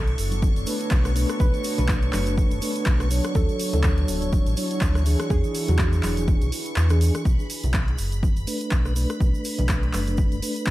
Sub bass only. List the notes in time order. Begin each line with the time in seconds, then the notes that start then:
Already playing: B1
0.18 F#1
0.56 F#1
0.91 B1
1.40 B1
1.78 B1
2.13 F#1
2.51 F#1
2.86 B1
3.35 D2
3.73 D2
4.08 D1
4.47 A1
4.82 D2
5.30 E2
5.68 E2
6.03 E1
6.42 B1
6.77 E2
7.25 B1
7.64 B1
7.99 F#1
8.37 F#1
8.72 B1
9.21 B1
9.59 B1
9.94 F#1
10.32 F#1
10.67 B1